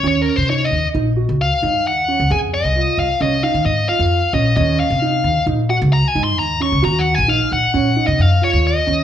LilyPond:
<<
  \new Staff \with { instrumentName = "Lead electric guitar" } { \time 5/4 \key ees \dorian \tempo 4 = 132 \tuplet 3/2 { des''8 bes'8 c''8 des''8 ees''8. r16 } r4 f''4 ges''4 | aes''8 ees''4 f''8 ees''8 f''8 ees''8 f''4 ees''8 | ees''8 f''4. r8 ges''8 \tuplet 3/2 { bes''8 aes''8 c'''8 } bes''8 des'''8 | \tuplet 3/2 { bes''8 ges''8 aes''8 } f''8 ges''8~ \tuplet 3/2 { ges''4 ees''8 } f''8 des''8 ees''4 | }
  \new Staff \with { instrumentName = "Grand piano" } { \time 5/4 \key ees \dorian des'4 ees'4 ees'8 ges'4 ees'4 des'8 | aes'4 f'4 des'8 ees'4 f'4 des'8 | des'4 ees'4 ees'8 ges'4 ees'4 des'8 | ges'4 ees'4 des'8 ees'4 f'4 des'8 | }
  \new Staff \with { instrumentName = "Upright bass" } { \clef bass \time 5/4 \key ees \dorian ees,8 r16 c8. ees,16 r16 bes,,8. des,8 r16 aes,8 ees,8. des,16 | f,8. c,8 r16 c,16 r16 c,8 r16 ees16 aes,8 r16 f,8 r16 bes,,8 | ees,8 r16 c8. ees,16 r16 bes,,8. des,8 r16 aes,8 ees,8. des,16 | ees,8. bes,,8 r16 bes,,16 r16 bes,,8 r16 c16 ges,8 r16 ees,8 r16 ees,8 | }
>>